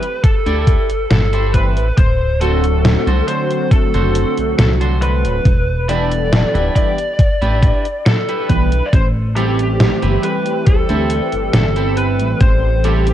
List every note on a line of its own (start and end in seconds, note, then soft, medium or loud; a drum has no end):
0.00 0.24 B4 loud
0.00 closed hi-hat medium
0.24 1.10 A4 loud
0.24 kick loud
0.24 closed hi-hat medium
0.46 0.77 D2 medium
0.46 0.90 E4 loud
0.46 0.90 G4 loud
0.46 0.90 A4 loud
0.46 0.90 D5 loud
0.46 closed hi-hat soft
0.67 kick loud
0.67 closed hi-hat medium
0.90 1.07 G1 soft
0.90 closed hi-hat medium
1.11 1.78 G1 medium
1.11 1.54 A4 medium
1.11 snare loud
1.11 closed hi-hat medium
1.33 1.87 E4 medium
1.33 1.87 G4 medium
1.33 1.87 A4 medium
1.33 1.87 C5 medium
1.33 closed hi-hat soft
1.53 1.73 E3 medium
1.53 1.73 G3 medium
1.53 1.74 A3 medium
1.53 1.74 C4 medium
1.53 1.95 B4 medium
1.53 1.74 B4 loud
1.53 kick medium
1.53 closed hi-hat medium
1.76 1.92 A1 medium
1.76 closed hi-hat medium
1.97 2.97 D1 loud
1.97 2.41 C5 loud
1.97 kick loud
1.97 closed hi-hat medium
2.40 3.23 D3 loud
2.40 3.23 F#3 medium
2.40 3.23 A3 medium
2.40 3.23 C4 medium
2.40 2.64 D4 loud
2.40 2.64 F#4 loud
2.40 3.23 F#4 loud
2.40 3.28 A4 loud
2.40 2.64 A4 loud
2.40 2.64 C5 loud
2.40 closed hi-hat medium
2.64 closed hi-hat medium
2.85 snare loud
2.85 closed hi-hat medium
3.07 3.22 C2 medium
3.07 3.50 D4 medium
3.07 3.51 F#4 medium
3.07 3.51 A4 medium
3.07 3.51 C5 loud
3.07 closed hi-hat soft
3.27 4.31 D3 medium
3.27 4.32 F#3 medium
3.27 4.32 A3 medium
3.27 4.32 C4 medium
3.27 4.33 F#4 loud
3.27 3.72 C5 loud
3.27 closed hi-hat medium
3.51 closed hi-hat medium
3.71 3.89 F#1 soft
3.71 4.55 A4 loud
3.71 kick loud
3.71 closed hi-hat medium
3.94 4.25 F#1 medium
3.94 4.37 D4 medium
3.94 4.37 F#4 loud
3.94 4.38 A4 loud
3.94 4.38 C5 loud
3.94 closed hi-hat soft
4.15 closed hi-hat medium
4.36 4.55 C2 soft
4.36 5.42 D3 medium
4.36 5.43 F#3 medium
4.36 5.43 A3 medium
4.36 5.43 C4 medium
4.36 5.44 F#4 medium
4.36 closed hi-hat medium
4.59 5.26 C2 medium
4.59 4.70 A4 medium
4.59 snare loud
4.59 closed hi-hat medium
4.80 5.35 D4 medium
4.80 5.35 F#4 medium
4.80 5.35 A4 medium
4.80 5.35 C5 loud
4.80 closed hi-hat soft
5.02 5.92 B4 loud
5.02 closed hi-hat medium
5.25 5.40 D1 medium
5.25 closed hi-hat medium
5.45 6.45 E1 medium
5.45 kick loud
5.45 closed hi-hat medium
5.88 6.70 E3 medium
5.88 6.71 G3 medium
5.88 6.71 B3 medium
5.88 6.71 D4 medium
5.88 6.11 D4 loud
5.88 6.11 E4 loud
5.88 6.11 G4 loud
5.88 6.71 A4 loud
5.88 6.11 B4 loud
5.88 6.74 D5 loud
5.88 closed hi-hat medium
6.12 closed hi-hat medium
6.32 muted clean electric guitar stroke soft
6.32 snare loud
6.32 closed hi-hat medium
6.54 6.70 D1 medium
6.54 6.98 D4 medium
6.54 6.98 E4 medium
6.54 6.98 G4 medium
6.54 6.98 B4 loud
6.54 closed hi-hat soft
6.75 6.95 E3 medium
6.75 6.95 G3 medium
6.75 6.95 B3 medium
6.75 6.96 D4 medium
6.75 6.96 G4 loud
6.75 8.10 D5 loud
6.75 kick medium
6.75 closed hi-hat medium
6.98 closed hi-hat soft
7.19 kick loud
7.19 closed hi-hat medium
7.41 7.73 A1 medium
7.41 7.85 D4 loud
7.41 7.85 E4 loud
7.41 7.85 G4 medium
7.41 7.85 B4 loud
7.41 closed hi-hat soft
7.63 kick loud
7.63 closed hi-hat medium
7.85 closed hi-hat medium
8.06 8.49 A4 medium
8.06 snare loud
8.06 closed hi-hat medium
8.29 8.83 D4 medium
8.29 8.83 E4 medium
8.29 8.83 G4 medium
8.29 8.83 B4 loud
8.29 closed hi-hat soft
8.49 8.82 B1 medium
8.49 8.69 E3 medium
8.49 8.69 G3 medium
8.49 8.69 B3 medium
8.49 8.69 D4 medium
8.49 8.88 B4 medium
8.49 8.70 B4 loud
8.49 kick medium
8.49 closed hi-hat medium
8.72 closed hi-hat medium
8.86 8.93 D5 medium
8.93 9.93 A1 loud
8.93 9.05 C5 loud
8.93 kick loud
8.93 closed hi-hat medium
9.36 10.18 E3 medium
9.36 10.18 G3 medium
9.36 10.18 A3 medium
9.36 10.19 C4 medium
9.36 9.59 C4 loud
9.36 9.59 E4 loud
9.36 10.26 G4 medium
9.36 9.59 G4 loud
9.36 10.19 G4 loud
9.36 9.59 A4 loud
9.36 closed hi-hat medium
9.59 closed hi-hat soft
9.80 snare loud
9.80 closed hi-hat medium
10.02 10.18 G1 medium
10.02 10.46 C4 medium
10.02 10.46 E4 medium
10.02 10.46 G4 medium
10.02 10.46 B4 loud
10.02 closed hi-hat soft
10.22 11.27 E3 medium
10.22 11.27 G3 medium
10.22 11.27 A3 medium
10.22 11.28 C4 medium
10.22 11.28 G4 loud
10.22 10.64 B4 loud
10.22 closed hi-hat medium
10.46 closed hi-hat soft
10.67 10.85 D2 soft
10.67 11.53 A4 loud
10.67 kick loud
10.67 closed hi-hat medium
10.89 11.21 D2 medium
10.89 11.33 C4 loud
10.89 11.33 E4 loud
10.89 11.33 G4 loud
10.89 11.33 A4 loud
10.89 closed hi-hat soft
11.10 closed hi-hat medium
11.31 11.50 G1 soft
11.31 12.79 E3 medium
11.31 12.79 G3 medium
11.31 12.79 A3 medium
11.31 12.80 C4 medium
11.31 12.80 G4 medium
11.31 closed hi-hat soft
11.53 12.21 G1 medium
11.53 11.97 A4 medium
11.53 snare loud
11.53 closed hi-hat medium
11.76 12.30 C4 medium
11.76 12.31 E4 medium
11.76 12.31 G4 medium
11.76 12.31 A4 loud
11.76 closed hi-hat soft
11.97 12.41 B4 medium
11.97 closed hi-hat medium
12.20 12.35 A1 medium
12.20 closed hi-hat medium
12.41 13.13 A1 loud
12.41 12.86 C5 loud
12.41 kick loud
12.41 closed hi-hat medium
12.83 13.13 E3 medium
12.83 13.13 G3 medium
12.83 13.13 A3 medium
12.83 13.13 C4 medium
12.83 13.07 C4 loud
12.83 13.07 E4 loud
12.83 13.07 G4 loud
12.83 13.13 G4 medium
12.83 13.13 A4 loud
12.83 13.07 A4 loud
12.83 closed hi-hat medium
13.07 closed hi-hat soft